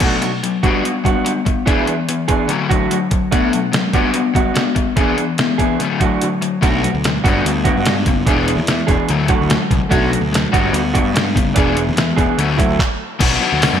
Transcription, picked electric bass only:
6.63 6.86 B1 medium
6.94 7.17 D2 medium
7.25 7.40 G1 medium
7.45 7.68 D2 medium
7.77 8.08 G2 medium
8.07 8.22 F#1 medium
8.27 8.58 E1 medium
8.57 8.81 E2 medium
8.88 8.96 E1 medium
9.10 9.33 D2 medium
9.41 9.57 D2 medium
9.71 9.79 C2 medium
9.92 10.16 B1 medium
10.21 10.45 D2 medium
10.54 10.70 G1 medium
10.73 10.97 D2 medium
11.03 11.38 G2 medium
11.36 11.52 F#1 medium
11.56 11.90 E1 medium
11.88 12.12 E2 medium
12.17 12.25 E1 medium
12.38 12.62 D2 medium
12.68 12.77 D2 medium
13.21 13.36 B1 loud
13.53 13.68 D2 medium
13.73 13.80 F#2 medium

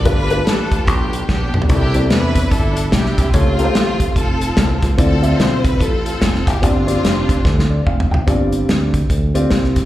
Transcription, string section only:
0.06 0.46 D4 medium
0.06 0.46 F4 medium
0.06 0.47 B4 loud
0.47 0.87 D4 medium
0.47 1.25 F4 medium
0.47 0.88 A4 loud
0.88 1.29 B3 medium
0.88 1.28 D4 medium
0.88 1.28 G4 medium
1.30 1.68 B3 medium
1.30 1.67 D4 medium
1.30 1.60 G4 medium
1.70 2.11 D4 medium
1.70 2.10 E4 medium
1.70 2.08 G4 loud
2.12 2.51 D4 medium
2.12 2.51 E4 medium
2.12 2.52 B4 loud
2.52 2.92 D4 medium
2.52 2.92 E4 medium
2.52 2.93 A4 medium
2.93 3.31 D4 medium
2.93 3.31 E4 medium
2.93 3.31 G4 medium
3.35 4.13 A3 medium
3.35 4.13 C4 medium
3.35 4.16 F4 loud
4.16 4.95 C4 medium
4.16 4.95 F4 medium
4.16 4.83 A4 loud
4.99 5.77 C4 medium
4.99 5.77 F4 medium
4.99 5.37 A4 loud
5.40 5.65 C5 medium
5.66 5.81 B4 medium
5.82 6.59 C4 medium
5.82 6.59 F4 medium
5.82 6.48 A4 medium
6.49 6.64 G4 medium
6.63 7.83 C4 medium
6.63 7.83 D4 medium
6.63 7.86 F4 medium

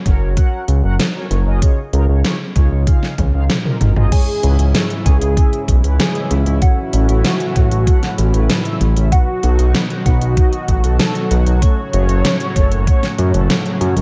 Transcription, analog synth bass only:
0.06 0.20 F#1 medium
0.21 0.36 F#1 medium
0.68 0.82 C#2 medium
0.84 0.98 F#1 medium
1.30 1.45 F#1 medium
1.46 1.61 F#1 medium
1.93 2.07 C#2 medium
2.09 2.23 C#2 medium
2.56 2.70 C#2 medium
2.71 2.86 C#2 medium
3.18 3.33 C#2 medium
3.34 3.48 C#2 medium
3.81 3.95 G#1 medium
3.97 4.11 G#1 medium
4.43 4.58 C#2 medium
4.59 4.73 C#2 medium
5.06 5.20 C#2 medium
5.21 5.36 C#2 medium
5.68 5.83 B1 medium
5.84 5.98 C#2 medium
6.31 6.45 C#2 medium
6.46 6.61 C#2 medium
6.93 7.08 A1 loud
7.09 7.23 A1 medium
7.56 7.70 A1 medium
7.71 7.86 A1 medium
8.18 8.33 A1 loud
8.34 8.48 A1 medium
8.81 8.95 A1 medium
8.96 9.11 A1 medium
9.43 9.58 B1 medium
9.59 9.73 B1 medium
10.06 10.20 B1 medium
10.21 10.36 B1 medium
10.68 10.83 A1 loud
10.84 10.98 B1 medium
11.31 11.45 B1 medium
11.46 11.61 B1 medium
11.93 12.08 F#1 medium
12.09 12.23 F#1 medium
12.56 12.70 F#1 medium
12.71 12.86 F#1 medium
13.19 13.33 F#2 loud
13.34 13.48 F#1 medium
13.81 13.95 F#2 medium
13.96 14.02 F#1 medium

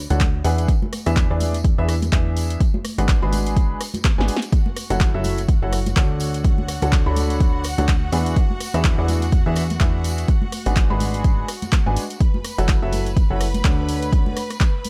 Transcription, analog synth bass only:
0.10 0.42 D2 loud
0.44 0.67 E2 medium
1.06 1.28 E2 loud
1.30 1.76 E2 medium
1.78 2.11 E2 loud
2.12 2.57 E2 loud
2.98 3.20 G#1 loud
3.22 3.76 G#1 medium
4.18 4.30 G#1 loud
4.90 5.12 F#1 loud
5.14 5.60 F#1 loud
5.62 5.94 F#1 loud
5.96 6.80 D2 loud
6.82 7.04 D2 loud
7.06 7.76 D2 loud
7.78 8.10 D2 loud
8.12 8.35 E2 medium
8.74 8.96 E2 loud
8.98 9.43 E2 loud
9.46 9.78 E2 loud
9.80 10.25 E2 loud
10.66 10.88 G#1 loud
10.90 11.44 G#1 loud
11.86 11.98 G#1 medium
12.58 12.80 F#1 loud
12.82 13.28 F#1 medium
13.30 13.63 F#1 loud
13.65 14.34 D2 loud

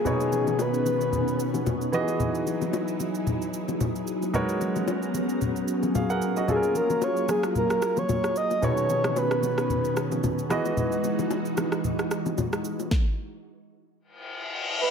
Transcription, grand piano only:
0.05 1.89 B2 medium
0.05 1.89 B3 medium
0.05 1.89 D#4 medium
0.05 1.90 G#4 medium
0.05 1.90 C#5 medium
1.92 4.03 E3 medium
1.92 4.03 B3 medium
1.92 4.03 F#4 medium
1.92 2.00 G4 medium
1.92 4.04 D#5 medium
2.00 4.07 G#4 medium
4.33 6.44 G#3 medium
4.33 6.44 D#4 medium
4.33 5.92 F#4 medium
4.33 5.92 A#4 medium
4.33 5.92 B4 medium
4.33 5.92 C#5 medium
5.95 6.09 G#4 medium
5.95 6.09 F5 medium
6.10 6.36 A#4 medium
6.10 6.35 F#5 medium
6.37 6.62 F#4 medium
6.37 6.62 D#5 medium
6.48 8.58 F#3 medium
6.48 8.59 C#4 medium
6.48 8.59 F4 medium
6.48 8.59 G#4 medium
6.48 6.56 A4 medium
6.56 8.63 A#4 medium
8.62 10.46 B2 medium
8.62 10.46 B3 medium
8.62 10.47 D#4 medium
8.62 10.47 G#4 medium
8.62 10.47 C#5 medium
10.49 12.60 E3 medium
10.49 12.60 B3 medium
10.49 12.61 F#4 medium
10.49 12.61 G#4 medium
10.49 12.61 D#5 medium

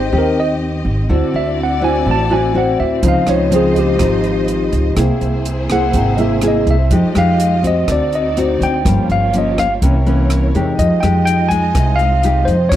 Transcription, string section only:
0.00 2.99 C4 medium
0.00 1.06 G4 medium
0.00 1.07 D#5 medium
1.10 3.01 E4 medium
1.10 3.01 F#4 medium
1.10 3.01 D5 medium
3.02 4.95 D#4 medium
3.02 4.95 F4 medium
3.02 4.95 C5 medium
3.02 4.94 D#5 medium
4.97 6.89 A#3 medium
4.97 6.90 E4 medium
4.97 6.89 G#4 medium
4.97 6.90 C5 medium
6.93 7.88 G#3 medium
6.93 7.87 F4 medium
6.93 7.88 G4 medium
6.93 7.88 D#5 medium
7.88 8.84 C4 medium
7.88 8.84 D#4 medium
7.88 8.84 F#4 medium
7.88 8.84 D5 medium
8.86 9.81 A#3 medium
8.86 9.81 F4 medium
8.86 9.81 G4 medium
8.86 9.81 C#5 medium
9.83 10.78 E4 medium
9.83 10.78 A#4 medium
9.83 10.78 C#5 medium
10.79 12.71 G#3 medium
10.79 12.70 D#4 medium
10.79 12.76 F4 medium
10.79 12.70 D#5 medium
12.69 12.76 A#3 medium
12.69 12.76 G#4 medium
12.69 12.76 C#5 medium

